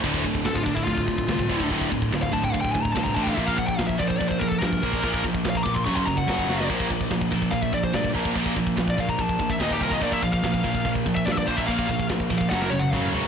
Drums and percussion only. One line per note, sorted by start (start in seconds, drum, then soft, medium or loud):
0.04 kick medium
0.04 crash loud
0.04 china medium
0.14 kick medium
0.24 kick medium
0.35 kick medium
0.45 kick medium
0.45 snare loud
0.45 china medium
0.56 kick medium
0.66 kick medium
0.77 kick medium
0.87 kick medium
0.87 china medium
0.97 kick medium
1.08 kick medium
1.18 kick medium
1.28 kick medium
1.28 snare loud
1.28 china medium
1.39 kick medium
1.50 kick medium
1.60 kick medium
1.71 kick medium
1.71 china medium
1.81 kick medium
1.92 kick medium
2.02 kick medium
2.13 kick medium
2.13 snare loud
2.13 china medium
2.23 kick medium
2.33 kick medium
2.44 kick medium
2.54 kick medium
2.54 china medium
2.65 kick medium
2.75 kick medium
2.85 kick medium
2.96 kick medium
2.96 snare loud
2.96 china medium
3.06 kick medium
3.16 kick medium
3.27 kick medium
3.37 kick medium
3.37 china medium
3.48 kick medium
3.58 kick medium
3.68 kick medium
3.78 kick medium
3.78 snare loud
3.78 china medium
3.89 kick medium
4.00 kick medium
4.10 kick medium
4.20 kick medium
4.20 china medium
4.31 kick medium
4.41 kick medium
4.52 kick medium
4.61 kick medium
4.61 snare loud
4.61 china medium
4.73 kick medium
4.83 kick medium
4.93 kick medium
5.03 kick medium
5.03 china medium
5.14 kick medium
5.24 kick medium
5.34 kick medium
5.44 kick medium
5.44 snare loud
5.44 china medium
5.55 kick medium
5.66 kick medium
5.76 kick medium
5.87 kick medium
5.87 china medium
5.97 kick medium
6.07 kick medium
6.18 kick medium
6.28 kick medium
6.28 snare loud
6.28 china medium
6.39 kick medium
6.50 snare medium
6.60 snare medium
6.70 kick medium
6.70 china medium
6.70 crash loud
6.80 kick loud
6.90 kick medium
7.01 kick medium
7.11 kick medium
7.11 snare loud
7.11 china medium
7.21 kick medium
7.32 kick medium
7.42 kick medium
7.52 kick medium
7.52 china medium
7.63 kick medium
7.73 kick medium
7.83 kick medium
7.93 kick medium
7.93 snare loud
7.93 china medium
8.04 kick medium
8.15 kick medium
8.25 kick medium
8.36 kick medium
8.36 china medium
8.46 kick medium
8.56 kick medium
8.67 kick medium
8.77 kick medium
8.77 snare loud
8.77 china medium
8.88 kick medium
8.98 kick medium
9.09 kick medium
9.19 kick medium
9.19 china medium
9.29 kick medium
9.40 kick medium
9.50 kick loud
9.60 kick medium
9.60 snare loud
9.60 china medium
9.71 kick medium
9.81 kick medium
9.91 kick medium
10.01 kick medium
10.01 china medium
10.12 kick medium
10.23 kick medium
10.33 kick medium
10.44 kick medium
10.44 snare loud
10.44 china medium
10.54 kick medium
10.64 kick medium
10.75 kick medium
10.85 kick medium
10.85 china medium
10.95 kick medium
11.06 kick medium
11.17 kick medium
11.27 kick medium
11.27 snare loud
11.27 china medium
11.37 kick medium
11.48 kick medium
11.58 kick medium
11.68 kick medium
11.68 china medium
11.79 kick medium
11.89 kick medium
11.99 kick medium
12.09 kick medium
12.09 snare loud
12.09 china medium
12.20 kick medium
12.30 kick medium
12.41 kick medium
12.51 kick medium
12.51 snare medium
12.62 snare medium
12.71 high tom medium
12.82 high tom medium
12.93 kick medium
12.93 mid tom loud
13.03 mid tom medium
13.12 floor tom medium
13.23 floor tom loud